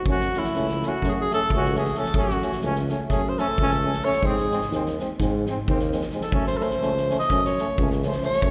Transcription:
0.05 0.32 F#2 medium
0.05 0.18 A3 soft
0.05 0.19 C#4 medium
0.05 kick medium
0.11 0.41 F#4 medium
0.20 snare soft
0.33 0.43 A3 medium
0.33 0.45 C#4 soft
0.33 snare soft
0.39 0.90 E4 medium
0.44 snare soft
0.54 0.81 C#2 medium
0.54 0.67 A3 medium
0.54 0.67 C#4 medium
0.54 snare soft
0.68 snare soft
0.82 0.90 A3 medium
0.82 snare soft
0.86 0.94 C#4 medium
0.86 1.10 F#4 medium
1.02 1.29 F#2 loud
1.02 1.13 A3 medium
1.02 1.16 C#4 soft
1.02 kick medium
1.02 snare soft
1.09 1.22 F#4 medium
1.09 1.12 G#4 medium
1.21 1.33 G#4 medium
1.31 1.39 A3 medium
1.31 1.41 C#4 medium
1.31 1.52 A4 loud
1.31 snare soft
1.50 1.87 C#2 loud
1.50 1.61 A3 medium
1.50 kick medium
1.56 1.65 C#4 medium
1.56 1.77 F#4 loud
1.63 snare soft
1.74 1.83 A3 medium
1.74 1.84 C#4 medium
1.74 snare soft
1.79 1.99 G#4 medium
1.84 snare soft
1.93 2.02 A3 medium
1.93 snare soft
1.98 2.06 C#4 medium
1.98 2.18 A4 medium
2.04 snare soft
2.13 2.42 F#2 medium
2.13 2.25 A3 medium
2.13 2.28 C#4 medium
2.13 2.64 F#4 medium
2.13 kick medium
2.29 snare soft
2.41 2.51 A3 medium
2.41 2.51 C#4 medium
2.41 snare soft
2.52 snare soft
2.61 2.90 C#2 medium
2.61 2.74 A3 medium
2.61 2.75 C#4 medium
2.61 snare soft
2.75 snare soft
2.88 2.97 A3 medium
2.88 2.99 C#4 medium
2.88 snare soft
3.09 3.38 F#2 medium
3.09 3.21 A3 medium
3.09 3.22 C#4 medium
3.09 3.31 G#4 medium
3.09 kick medium
3.09 snare soft
3.29 3.40 C5 medium
3.37 3.47 A3 medium
3.37 3.48 C#4 medium
3.37 4.06 A4 loud
3.37 snare soft
3.58 3.95 C#2 loud
3.58 3.69 A3 medium
3.58 3.70 C#4 medium
3.58 kick medium
3.70 snare soft
3.82 3.91 A3 medium
3.82 3.93 C#4 medium
3.93 snare soft
4.03 4.11 A3 medium
4.03 4.13 C#4 medium
4.03 4.28 C#5 medium
4.03 snare soft
4.12 snare soft
4.21 4.50 G#2 medium
4.21 4.33 G#3 medium
4.21 4.35 C4 medium
4.21 kick medium
4.26 4.74 G#4 medium
4.36 snare soft
4.50 4.59 G#3 medium
4.50 4.61 C4 medium
4.50 snare soft
4.61 snare soft
4.71 4.98 D#2 medium
4.71 4.84 G#3 medium
4.71 4.84 C4 medium
4.71 snare soft
4.86 snare soft
4.99 5.07 G#3 medium
4.99 5.09 C4 medium
4.99 snare soft
5.19 5.47 G#2 loud
5.19 5.30 G#3 medium
5.19 5.33 C4 medium
5.19 kick medium
5.19 snare soft
5.46 5.56 G#3 medium
5.46 5.58 C4 medium
5.46 snare soft
5.68 6.04 D#2 loud
5.68 5.79 G#3 medium
5.68 5.79 C4 medium
5.68 kick medium
5.79 snare soft
5.92 6.02 G#3 medium
5.92 6.01 C4 medium
5.92 snare soft
6.01 snare soft
6.10 6.21 G#3 medium
6.10 6.22 C4 medium
6.10 snare soft
6.21 6.45 A4 medium
6.21 snare soft
6.32 6.60 F#2 medium
6.32 6.45 A3 medium
6.32 6.44 C#4 medium
6.32 kick medium
6.46 6.59 C5 medium
6.46 snare soft
6.57 6.68 A3 medium
6.57 6.69 C#4 medium
6.57 6.64 A4 medium
6.57 snare soft
6.63 7.18 C5 medium
6.70 snare soft
6.80 7.08 C#2 medium
6.80 6.93 A3 medium
6.80 6.92 C#4 medium
6.80 snare soft
6.97 snare soft
7.09 7.19 A3 medium
7.09 7.18 C#4 medium
7.09 snare soft
7.19 7.42 D#5 medium
7.19 snare soft
7.29 7.57 F#2 medium
7.29 7.42 A3 medium
7.29 7.41 C#4 medium
7.29 kick medium
7.29 snare soft
7.44 7.88 C#5 medium
7.44 snare soft
7.58 7.67 A3 medium
7.58 7.67 C#4 medium
7.58 snare soft
7.78 8.13 C#2 loud
7.78 7.89 A3 medium
7.78 7.90 C#4 medium
7.78 kick medium
7.90 snare soft
8.02 8.14 A3 medium
8.02 8.12 C#4 medium
8.02 8.22 C5 medium
8.02 snare soft
8.12 snare soft
8.21 8.31 A3 medium
8.21 8.30 C#4 soft
8.21 8.51 C#5 medium
8.21 snare soft
8.33 snare soft
8.42 8.51 F#2 medium
8.42 8.51 A3 medium
8.42 8.51 C#4 medium
8.42 kick medium

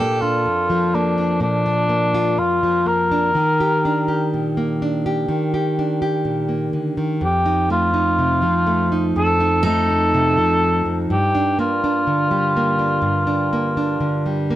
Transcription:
0.00 0.46 A#2 medium
0.00 0.94 A#3 soft
0.00 0.22 D4 soft
0.00 0.23 G4 medium
0.00 2.59 A4 medium
0.21 1.17 D4 soft
0.21 0.96 F4 medium
0.46 1.42 F2 soft
0.70 2.62 F3 soft
0.94 1.88 A#3 soft
0.94 1.41 D4 medium
1.18 1.65 D4 soft
1.40 2.38 A#2 medium
1.40 2.41 D4 medium
1.66 3.10 D4 soft
1.89 2.84 A#3 soft
2.14 3.35 F4 soft
2.38 3.35 F2 medium
2.38 2.89 F4 medium
2.63 3.30 F3 soft
2.86 3.29 A#3 soft
2.86 4.32 A#4 medium
3.11 3.30 D4 soft
3.35 5.27 D#3 medium
3.60 4.07 G4 medium
3.85 4.81 D4 soft
4.08 5.05 G4 soft
4.34 5.29 A#2 soft
4.57 6.47 A#3 medium
4.82 5.78 D4 soft
5.06 5.53 G4 medium
5.29 6.96 D#3 medium
5.54 6.01 G4 medium
5.79 7.17 D4 medium
6.02 7.16 G4 soft
6.25 6.73 A#2 medium
6.49 7.15 A#3 soft
6.73 6.97 D3 soft
6.97 7.22 D#3 soft
7.21 9.15 F2 medium
7.21 7.68 G4 medium
7.46 7.93 D#4 soft
7.70 8.65 A3 soft
7.70 9.12 F4 medium
7.94 8.91 D#4 soft
8.19 8.43 C3 medium
8.42 10.37 F3 soft
8.67 9.63 A3 soft
8.92 9.39 D#4 soft
9.16 10.84 F2 medium
9.16 9.61 A4 medium
9.40 9.88 D#4 soft
9.63 11.04 A3 soft
9.63 11.54 D#4 medium
9.63 11.06 A4 medium
9.90 11.05 D#4 soft
10.14 10.37 C3 medium
10.37 11.13 F3 soft
10.85 11.09 F2 soft
11.10 13.01 G2 medium
11.10 11.56 G4 medium
11.35 11.83 D4 soft
11.59 12.56 A#3 soft
11.59 14.48 F4 medium
11.84 12.79 D4 soft
12.07 13.99 D3 soft
12.31 14.25 G3 soft
12.57 13.52 A#3 soft
12.79 13.27 D4 soft
13.02 14.56 G2 medium
13.27 13.77 D4 soft
13.53 14.50 A#3 soft
13.77 14.56 D4 soft
14.00 14.56 D3 medium
14.26 14.56 G3 soft
14.50 14.56 A#3 soft

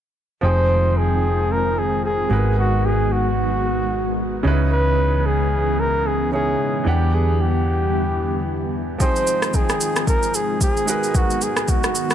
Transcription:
0.41 2.27 F1 medium
0.41 2.29 D#3 medium
0.41 2.26 F3 medium
0.41 6.82 G#3 medium
0.41 2.26 C4 medium
0.41 2.29 C4 medium
0.41 2.27 D#4 medium
0.41 2.29 F4 medium
0.41 0.99 C5 loud
0.41 2.28 G5 medium
0.45 2.28 G#4 medium
0.98 1.53 G#4 medium
1.52 1.80 A#4 loud
1.78 2.05 G#4 medium
2.05 2.54 G#4 medium
2.29 4.41 G#1 medium
2.29 4.43 D#3 medium
2.29 4.40 G#3 medium
2.29 4.43 B3 medium
2.29 4.41 D#4 medium
2.29 4.43 F#4 medium
2.29 4.41 F#4 medium
2.29 4.42 A#4 medium
2.33 4.42 B4 medium
2.59 2.87 F#4 medium
2.85 3.14 G#4 medium
3.12 4.46 F#4 medium
4.43 6.55 C#2 medium
4.43 6.28 C#3 medium
4.43 6.84 C#3 medium
4.43 6.84 E3 medium
4.43 8.96 B3 medium
4.43 6.28 C#4 medium
4.43 6.29 D#4 medium
4.43 6.29 E4 medium
4.47 6.30 B4 medium
4.72 5.27 B4 loud
5.26 5.81 G#4 medium
5.80 6.08 A#4 loud
6.07 6.33 G#4 medium
6.31 6.86 C#3 soft
6.31 6.86 C#4 soft
6.31 6.86 D#4 soft
6.31 6.86 E4 soft
6.31 6.89 G#4 medium
6.31 6.87 C#5 medium
6.84 8.97 E2 medium
6.84 8.98 D3 medium
6.84 8.95 E3 medium
6.84 8.98 G3 medium
6.84 8.96 B3 medium
6.84 8.96 D4 medium
6.84 8.98 E4 medium
6.84 7.16 G4 medium
6.84 8.97 F#5 medium
6.88 8.97 G4 medium
7.14 7.42 G#4 medium
7.41 8.74 G4 medium
8.98 10.86 D#3 medium
8.98 10.83 F3 medium
8.98 12.15 G#3 medium
8.98 10.84 C4 medium
8.98 10.86 C4 medium
8.98 10.84 D#4 medium
8.98 10.86 F4 medium
8.98 9.57 C5 loud
8.98 10.85 G5 medium
8.98 kick loud
8.98 shaker medium
9.03 10.85 G#4 medium
9.16 shaker medium
9.27 shaker medium
9.42 cross-stick medium
9.42 shaker medium
9.53 10.08 G#4 loud
9.53 kick medium
9.53 shaker medium
9.69 cross-stick medium
9.69 shaker medium
9.81 shaker loud
9.96 cross-stick medium
9.96 shaker medium
10.07 10.37 A#4 loud
10.07 kick loud
10.07 shaker medium
10.23 shaker medium
10.34 10.62 G#4 medium
10.34 shaker medium
10.61 11.17 G#4 loud
10.61 kick medium
10.61 shaker medium
10.77 shaker soft
10.86 12.15 D#3 medium
10.86 12.15 G#3 medium
10.86 12.15 B3 medium
10.86 12.15 D#4 medium
10.86 12.15 F#4 medium
10.86 12.15 A#4 medium
10.86 shaker loud
10.90 12.15 B4 medium
11.03 shaker medium
11.15 11.44 F#4 medium
11.15 kick loud
11.15 shaker medium
11.30 shaker medium
11.41 11.71 G#4 medium
11.41 shaker medium
11.57 cross-stick medium
11.57 shaker medium
11.68 12.15 F#4 medium
11.68 kick medium
11.68 shaker medium
11.84 cross-stick medium
11.84 shaker medium
11.95 shaker loud
12.10 cross-stick medium
12.10 shaker soft

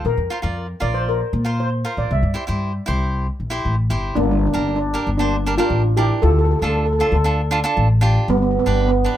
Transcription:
0.05 0.14 A#1 medium
0.05 0.85 A#4 medium
0.17 0.27 F2 medium
0.30 0.38 F4 medium
0.30 0.38 A#4 medium
0.30 0.39 C5 medium
0.42 0.72 F2 medium
0.42 0.66 F4 medium
0.42 0.66 A#4 medium
0.42 0.66 D5 medium
0.80 1.21 A#1 medium
0.80 1.19 F4 medium
0.80 1.20 A#4 medium
0.80 1.20 D5 medium
0.80 0.87 D5 medium
0.94 1.00 C5 medium
1.09 1.61 A#4 medium
1.33 1.82 A#2 medium
1.45 1.68 F4 medium
1.45 1.69 A#4 medium
1.45 1.69 C5 medium
1.60 1.95 C5 medium
1.85 2.10 F4 medium
1.85 2.11 A#4 medium
1.85 2.11 C5 medium
1.97 2.07 A#1 medium
1.97 2.11 D5 medium
2.11 2.20 C2 medium
2.11 3.62 E5 medium
2.23 2.33 G2 medium
2.34 2.43 E4 medium
2.34 2.43 G4 medium
2.34 2.43 C5 medium
2.47 2.78 G2 medium
2.47 2.71 E4 medium
2.47 2.72 G4 medium
2.47 2.72 C5 medium
2.86 3.27 C2 medium
2.86 3.26 E4 medium
2.86 3.26 G4 medium
2.86 3.26 C5 medium
3.40 3.63 A#1 medium
3.50 3.74 E4 medium
3.50 3.75 G4 medium
3.50 3.75 C5 medium
3.65 3.88 A1 medium
3.90 4.14 G1 medium
3.90 4.16 E4 medium
3.90 4.16 G4 medium
3.90 4.17 C5 medium
4.15 4.46 G1 medium
4.15 4.23 A#3 medium
4.15 4.22 D4 loud
4.23 4.30 D4 medium
4.31 4.38 D4 medium
4.39 4.45 D4 medium
4.46 4.52 D4 medium
4.53 4.94 G1 medium
4.53 4.58 D4 medium
4.53 4.78 D4 medium
4.53 4.78 G4 medium
4.53 4.78 A#4 medium
4.59 4.67 D4 medium
4.68 4.75 D4 medium
4.76 4.83 D4 medium
4.94 5.09 D4 medium
4.94 5.10 G4 medium
4.94 5.10 A#4 medium
5.07 5.56 G1 medium
5.18 5.55 A#3 medium
5.18 5.58 D4 medium
5.18 5.35 D4 medium
5.18 5.35 G4 medium
5.18 5.36 C5 medium
5.46 5.54 D4 medium
5.46 5.54 G4 medium
5.46 5.54 A#4 medium
5.57 5.81 D4 medium
5.57 5.94 D4 medium
5.57 5.97 F4 loud
5.57 5.82 G4 medium
5.57 5.82 A#4 medium
5.70 6.09 A1 medium
5.97 6.23 D4 medium
5.97 6.09 E4 medium
5.97 6.08 G4 medium
5.97 6.23 G4 medium
5.97 6.23 A#4 medium
6.22 6.52 D2 loud
6.22 6.30 F4 medium
6.22 6.29 A4 medium
6.30 6.37 A4 medium
6.39 6.44 A4 medium
6.45 6.50 A4 medium
6.51 6.58 A4 medium
6.59 7.00 D2 medium
6.59 6.85 D4 medium
6.59 6.85 F4 medium
6.59 6.66 A4 medium
6.64 6.86 A4 medium
6.69 6.75 A4 medium
6.77 6.83 A4 medium
6.86 6.91 A4 medium
6.93 6.98 A4 medium
6.99 7.15 D4 medium
6.99 7.15 F4 medium
6.99 7.05 A4 medium
6.99 7.15 A4 medium
7.07 7.13 A4 medium
7.12 7.61 D2 medium
7.12 7.20 A4 medium
7.24 7.40 D4 medium
7.24 7.41 F4 medium
7.24 7.41 A4 medium
7.51 7.59 D4 medium
7.51 7.59 F4 medium
7.51 7.59 A4 medium
7.64 7.87 D4 medium
7.64 7.87 F4 medium
7.64 7.87 A4 medium
7.77 8.16 A1 medium
8.01 8.27 D4 medium
8.01 8.28 F4 medium
8.01 8.28 G4 medium
8.28 8.57 G1 medium
8.28 8.36 G3 medium
8.28 8.36 B3 loud
8.37 8.41 B3 medium
8.42 8.49 B3 medium
8.51 8.57 B3 medium
8.59 8.63 B3 medium
8.65 9.05 G1 medium
8.65 8.71 B3 medium
8.65 8.89 D4 medium
8.65 8.90 G4 medium
8.65 8.90 B4 medium
8.72 8.79 B3 medium
8.80 8.87 B3 medium
8.88 8.95 B3 medium
9.04 9.17 D4 medium
9.04 9.17 G4 medium
9.04 9.17 B4 medium

